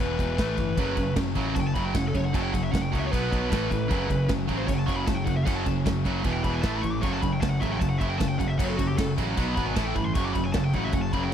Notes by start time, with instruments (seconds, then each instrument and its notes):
0.00 picked electric bass E1, distorted electric guitar E2 B2 E3, lead electric guitar B4
0.19 picked electric bass E1, distorted electric guitar E2 B2 E3, kick, crash
0.38 picked electric bass A1, distorted electric guitar A2 E3 A3, kick, snare, crash
0.57 picked electric bass G1, distorted electric guitar A2 E3, kick, crash
0.77 picked electric bass F#1, distorted electric guitar F#2 C#3 F#3, kick, crash
0.97 picked electric bass F#1, distorted electric guitar F#2 C#3, kick, crash
1.16 picked electric bass F#1, distorted electric guitar F#2 C#3, kick, snare, crash
1.35 picked electric bass A1, distorted electric guitar F#2 C#3 F#3, kick, crash
1.55 picked electric bass F#1, distorted electric guitar F#2 C#3, lead electric guitar A5, kick, crash
1.60 lead electric guitar G5
1.67 lead electric guitar A5
1.74 picked electric bass F#1, distorted electric guitar F#2 C#3 F#3, lead electric guitar B5, kick, crash
1.84 lead electric guitar G5
1.94 picked electric bass F#1, distorted electric guitar F#2 C#3, lead electric guitar F#5, kick, snare, crash
2.08 lead electric guitar A4
2.15 picked electric bass F#1, distorted electric guitar F#2 C#3, lead electric guitar C#5, kick, crash
2.25 lead electric guitar F#5
2.34 picked electric bass F#1, distorted electric guitar F#2 C#3 F#3, lead electric guitar A5, kick, crash
2.43 lead electric guitar G5
2.53 picked electric bass F#1, distorted electric guitar F#2 C#3, lead electric guitar F#5, kick, crash
2.64 lead electric guitar E5
2.72 picked electric bass F#1, distorted electric guitar F#2 C#3, lead electric guitar F#5, kick, snare, crash
2.83 lead electric guitar G5
2.91 picked electric bass C#2, distorted electric guitar F#2, overdriven electric guitar F#3, lead electric guitar F#5, kick, crash
2.95 distorted electric guitar C#3 F#3
2.99 lead electric guitar E5
3.05 lead electric guitar C#5
3.11 picked electric bass B1, distorted electric guitar B2 F#3 B3, lead electric guitar B4, kick, crash
3.31 picked electric bass B1, distorted electric guitar B2 F#3 B3, kick, crash
3.51 picked electric bass A1, distorted electric guitar A2 E3 A3, kick, snare, crash
3.71 picked electric bass A1, distorted electric guitar A2 E3, kick, crash
3.91 picked electric bass F#1, distorted electric guitar F#2 C#3 F#3, kick, crash
4.10 picked electric bass F#1, distorted electric guitar F#2 C#3, kick, crash
4.29 picked electric bass F#1, distorted electric guitar F#2 C#3, kick, snare, crash
4.49 picked electric bass A1, distorted electric guitar F#2 C#3 F#3, kick, crash
4.58 lead electric guitar C5
4.67 picked electric bass F#1, distorted electric guitar F#2 C#3, lead electric guitar C#5, kick, crash
4.74 lead electric guitar F#5
4.79 lead electric guitar A5
4.86 picked electric bass F#1, distorted electric guitar F#2 C#3 F#3, lead electric guitar C#6, kick, crash
4.96 lead electric guitar B5
5.06 picked electric bass F#1, distorted electric guitar F#2 C#3, lead electric guitar A5, kick, snare, crash
5.15 lead electric guitar G5
5.25 picked electric bass F#1, distorted electric guitar F#2 C#3, lead electric guitar F#5, kick, crash
5.36 lead electric guitar E5
5.46 picked electric bass F#1, distorted electric guitar F#2 C#3 F#3, lead electric guitar F#5, kick, crash
5.55 lead electric guitar A5
5.66 picked electric bass F#1, distorted electric guitar F#2 C#3, kick, crash
5.85 picked electric bass F#1, distorted electric guitar F#2 C#3, kick, snare, crash
6.05 picked electric bass F#1, distorted electric guitar F#2 C#3 F#3, kick, crash
6.23 picked electric bass E1, distorted electric guitar E2 B2 E3, kick, crash
6.33 lead electric guitar G5
6.43 picked electric bass E1, distorted electric guitar E2 B2 E3, lead electric guitar B5, kick, crash
6.53 lead electric guitar G#5
6.62 picked electric bass A1, distorted electric guitar A2 E3 A3, lead electric guitar A5, kick, snare, crash
6.71 lead electric guitar B5
6.82 picked electric bass A1, distorted electric guitar A2 E3, lead electric guitar C#6, kick, crash
6.92 lead electric guitar D6
7.01 picked electric bass F#1, distorted electric guitar F#2 C#3 F#3, lead electric guitar C#6, kick, crash
7.13 lead electric guitar A5
7.22 picked electric bass F#1, distorted electric guitar F#2 C#3, lead electric guitar B5, kick, crash
7.33 lead electric guitar G5
7.40 picked electric bass F#1, distorted electric guitar F#2 C#3, lead electric guitar A5, kick, snare, crash
7.50 lead electric guitar F#5
7.60 picked electric bass A1, distorted electric guitar F#2 C#3 F#3, lead electric guitar E5, kick, crash
7.70 lead electric guitar G5
7.79 picked electric bass F#1, distorted electric guitar F#2 C#3, lead electric guitar A5, kick, crash
7.89 lead electric guitar F#5
7.98 picked electric bass F#1, distorted electric guitar F#2 C#3 F#3, lead electric guitar E5, kick, crash
8.09 lead electric guitar G5
8.18 picked electric bass F#1, distorted electric guitar F#2 C#3, lead electric guitar A5, kick, snare, crash
8.29 lead electric guitar G5
8.39 picked electric bass F#1, distorted electric guitar F#2 C#3, lead electric guitar F#5, kick, crash
8.47 lead electric guitar E5
8.58 picked electric bass F#1, distorted electric guitar F#2 C#3 F#3, lead electric guitar F#5, kick, crash
8.64 lead electric guitar C#5
8.69 lead electric guitar A4
8.77 picked electric bass F#1, distorted electric guitar F#2 C#3, lead electric guitar F#4, kick, crash
8.87 lead electric guitar G4
8.97 picked electric bass F#1, distorted electric guitar F#2 C#3, lead electric guitar A4, kick, snare, crash
9.18 picked electric bass A1, distorted electric guitar F#2 C#3 F#3, kick, crash
9.37 picked electric bass B1, distorted electric guitar B2 F#3 B3, kick, crash
9.55 picked electric bass G#1, distorted electric guitar B2 F#3 B3, lead electric guitar B5, kick, crash
9.66 lead electric guitar G#5
9.76 picked electric bass A1, distorted electric guitar A2 E3 A3, lead electric guitar A5, kick, snare, crash
9.85 lead electric guitar G5
9.95 picked electric bass G1, distorted electric guitar A2 E3, lead electric guitar B5, kick, crash
10.04 lead electric guitar C6
10.14 picked electric bass F#1, distorted electric guitar F#2 C#3 F#3, lead electric guitar C#6, kick, crash
10.25 lead electric guitar D6
10.34 picked electric bass F#1, distorted electric guitar F#2 C#3, lead electric guitar B5, kick, crash
10.44 lead electric guitar G#5
10.53 picked electric bass F#1, distorted electric guitar F#2 C#3, lead electric guitar A5, kick, snare, crash
10.65 lead electric guitar G5
10.73 picked electric bass A1, distorted electric guitar F#2 C#3 F#3, lead electric guitar F#5, kick, crash
10.84 lead electric guitar E5
10.93 picked electric bass F#1, distorted electric guitar F#2 C#3, lead electric guitar F#5, kick, crash
11.02 lead electric guitar A5
11.13 picked electric bass F#1, distorted electric guitar F#2 C#3 F#3, lead electric guitar B5, kick, crash
11.23 lead electric guitar G5